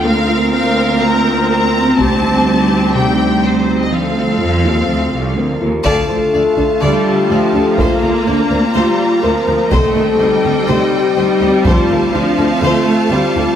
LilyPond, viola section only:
\new Staff \with { instrumentName = "Viola section" } { \clef bass \time 4/4 \key d \phrygian \tempo 4 = 124 << { bes'1 | g'1 | a'2.~ a'8 r8 | r2 g4 f4 |
bes2 g4 f4 | a4 g2 g4~ | g4 f4 a4 g4 | } \\ { c'1~ | c'1 | c'2.~ c'8 r8 | r1 |
r1 | r1 | r1 | } >> }